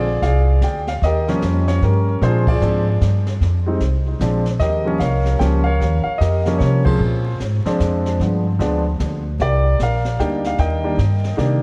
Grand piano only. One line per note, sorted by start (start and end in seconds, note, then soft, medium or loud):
0.00 0.45 F4 medium
0.00 0.23 G#4 medium
0.00 0.22 D5 medium
0.22 0.84 G#4 medium
0.22 0.84 D5 medium
0.22 0.59 F5 medium
0.64 0.87 G5 medium
0.88 0.93 F5 medium
1.04 1.65 G4 medium
1.04 1.65 A#4 medium
1.04 1.70 D#5 medium
1.28 1.79 F3 medium
1.28 1.79 G3 medium
1.28 1.79 A#3 medium
1.28 1.80 C#4 medium
1.68 1.81 C#5 medium
1.83 2.20 C#4 soft
1.83 2.20 G4 soft
1.83 2.23 A#4 medium
2.22 2.44 F3 medium
2.22 2.44 G#3 medium
2.22 2.44 C4 medium
2.22 2.45 D4 medium
2.22 2.48 F4 medium
2.22 2.49 G#4 medium
2.22 2.46 C5 medium
2.48 2.99 F4 medium
2.48 2.99 G#4 medium
2.48 2.98 D5 medium
2.62 2.84 F3 medium
2.62 2.85 G#3 medium
2.62 2.85 C4 medium
2.62 2.85 D4 medium
3.66 3.79 G3 medium
3.66 3.80 G#3 medium
3.66 3.80 C4 medium
3.66 3.80 D#4 medium
4.21 4.44 F3 medium
4.21 4.44 G#3 medium
4.21 4.44 C4 medium
4.21 4.44 D4 medium
4.60 5.22 G4 medium
4.60 5.01 A#4 medium
4.60 4.97 D#5 loud
4.85 4.98 F3 medium
4.85 4.99 G3 medium
4.85 4.99 A#3 medium
4.85 5.00 C#4 medium
4.99 5.63 A#4 medium
4.99 5.63 C#5 medium
4.99 5.37 F5 medium
5.39 5.63 F3 medium
5.39 5.63 G3 medium
5.39 5.63 A#3 medium
5.39 5.63 C#4 medium
5.39 5.45 G5 medium
5.64 6.17 A#4 medium
5.64 6.16 C#5 medium
5.64 6.02 F5 medium
6.04 6.19 F5 medium
6.18 6.81 G4 medium
6.18 6.81 A#4 medium
6.18 6.56 D#5 medium
6.46 6.83 F3 medium
6.46 6.84 G3 medium
6.46 6.84 A#3 medium
6.46 6.84 C#4 medium
6.58 6.83 C#5 medium
6.85 6.99 F3 medium
6.85 6.99 G#3 medium
6.85 6.99 C4 medium
6.85 7.37 F4 medium
6.85 7.37 G#4 soft
6.85 7.36 C5 medium
7.66 8.17 F3 medium
7.66 8.17 G#3 medium
7.66 8.17 C4 medium
7.66 8.17 D4 medium
8.22 8.44 F3 medium
8.22 8.44 G#3 soft
8.22 8.44 B3 soft
8.22 8.44 D4 soft
8.59 8.82 F3 medium
8.59 8.82 G#3 medium
8.59 8.83 B3 medium
8.59 8.83 D4 medium
9.41 10.01 G4 medium
9.41 9.81 A#4 medium
9.41 9.78 D5 medium
9.83 10.42 A#4 medium
9.83 10.18 F5 loud
10.20 10.80 G3 medium
10.20 10.80 A#3 medium
10.20 10.80 D4 medium
10.20 10.80 D#4 medium
10.20 10.45 G5 medium
10.47 10.59 F5 medium
10.59 11.62 A#4 medium
10.59 11.62 D#5 medium
10.59 11.62 G5 loud
10.84 10.97 D#3 medium
10.84 10.97 G3 medium
10.84 10.97 A#3 medium
10.84 10.98 D4 medium
11.37 11.61 D#3 medium
11.37 11.61 G3 medium
11.37 11.61 A#3 medium
11.37 11.61 D4 medium